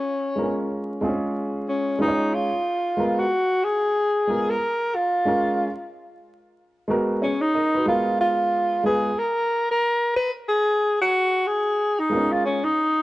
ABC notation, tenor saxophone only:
X:1
M:4/4
L:1/16
Q:"Swing 16ths" 1/4=92
K:G#dor
V:1 name="Tenor saxophone"
C4 z6 C2 D2 E2- | E3 F3 G4- G A3 E2- | E4 z8 C D3 | E2 E4 G2 A3 A3 B2 |
G3 F3 G3 D2 E C D3 |]